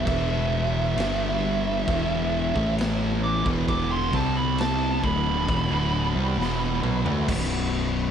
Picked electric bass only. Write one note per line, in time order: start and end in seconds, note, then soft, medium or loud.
0.07 0.93 E1 loud
0.96 1.83 G1 medium
1.88 2.51 E1 loud
2.56 3.41 A1 loud
3.46 4.09 E1 loud
4.13 4.99 C2 loud
5.03 5.45 D1 loud
5.48 5.69 E1 medium
5.70 6.12 D1 loud
6.15 6.36 C2 loud
6.37 6.80 E1 loud
6.82 7.04 B1 loud
7.05 7.26 D2 loud
7.29 8.11 B0 loud